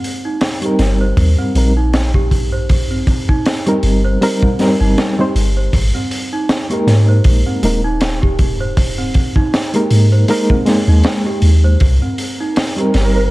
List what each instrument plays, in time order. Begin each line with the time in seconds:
Already playing: celesta C4
0.04 open hi-hat
0.25 celesta D#4
0.41 snare, open hi-hat
0.62 reed electric piano G3 C4 D#4, celesta G4, closed hi-hat
0.66 reed electric piano A#4
0.79 808-style bass G1, snare, open hi-hat
1.01 celesta C5
1.17 808-style bass D#2, kick, open hi-hat
1.39 celesta C4
1.55 808-style bass A#1, reed electric piano G3 C4 D#4 A#4, open hi-hat
1.77 celesta D#4
1.94 snare, open hi-hat
2.14 celesta G4, kick
2.31 kick, open hi-hat
2.52 celesta C5
2.69 kick, open hi-hat
2.90 celesta C4
3.07 kick, open hi-hat
3.29 celesta D#4, kick
3.46 snare, open hi-hat
3.66 reed electric piano G3 C4 D#4 A#4, celesta G4, closed hi-hat
3.83 808-style bass G1, open hi-hat
4.05 celesta C5
4.21 reed electric piano G3 C4 D#4 A#4, open hi-hat
4.42 celesta C4, kick
4.59 reed electric piano G3 C4 D#4 A#4, snare, open hi-hat
4.80 808-style bass G1, celesta D#4
4.98 snare, open hi-hat
5.19 reed electric piano G3 C4 D#4 C5, celesta G4
5.35 808-style bass G1, open hi-hat
5.57 celesta C5
5.73 808-style bass G#1, kick, open hi-hat
5.95 celesta C4
6.11 open hi-hat
6.33 celesta D#4
6.49 snare, open hi-hat
6.70 reed electric piano G#3 A#3 D#4 A#4, celesta G4, closed hi-hat
6.87 808-style bass G#2, snare, open hi-hat
7.08 celesta C5
7.24 808-style bass A#1, kick, open hi-hat
7.46 celesta C4
7.63 808-style bass D#1, reed electric piano G#3 A#3 D#4 A#4, open hi-hat
7.84 celesta D#4
8.01 snare, open hi-hat
8.22 celesta G4, kick
8.39 kick, open hi-hat
8.60 celesta C5
8.77 kick, open hi-hat
8.98 celesta C4
9.14 kick, open hi-hat
9.36 celesta D#4, kick
9.54 snare, open hi-hat
9.74 reed electric piano G#3 A#3 D#4 A#4, celesta G4, closed hi-hat
9.90 808-style bass G#2, open hi-hat
10.12 celesta C5
10.28 reed electric piano G#3 A#3 D#4 A#4, open hi-hat
10.50 celesta C4, kick
10.66 reed electric piano G#3 A#3 D#4, snare, open hi-hat
10.88 808-style bass D#2, celesta D#4
11.04 snare, open hi-hat
11.26 celesta G4
11.42 808-style bass D#2, open hi-hat
11.64 celesta C5
11.80 808-style bass C2, synth texture A#3 A#4, kick, open hi-hat
12.02 celesta C4
12.18 open hi-hat
12.40 celesta D#4
12.56 snare, open hi-hat
12.76 reed electric piano G3 C4 D#4, celesta G4, closed hi-hat
12.81 reed electric piano A#4
12.94 808-style bass G1, snare, open hi-hat
13.16 celesta C5